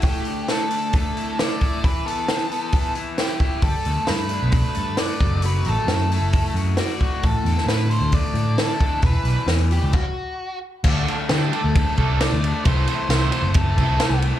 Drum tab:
CC |----------------|----------------|----------------|----------------|
RD |----------------|----------------|----------------|----------------|
HH |o-o-o-o-o-o-o-o-|o-o-o-o-o-o-o-o-|o-o-o-o-o-o-o-o-|o-o-o-o-o-o-o-o-|
SD |----o-------o---|----o-------o---|----o-------o---|----o-------o---|
BD |o-------o-----o-|o-------o-----o-|o-------o-----o-|--------o-----o-|

CC |----------------|--------x-------|x---------------|----------------|
RD |----------------|----------------|--x-x-x-x-x-x-x-|x-x-x-x-x-x-x-x-|
HH |o-o-o-o-o-o-o-o-|o-o-o-o---------|----------------|----------------|
SD |---oo-------o---|----o-----------|----o-------o---|----o-------o---|
BD |o-------o-----o-|o-------o-------|o-------o-o-----|o-------o-o-----|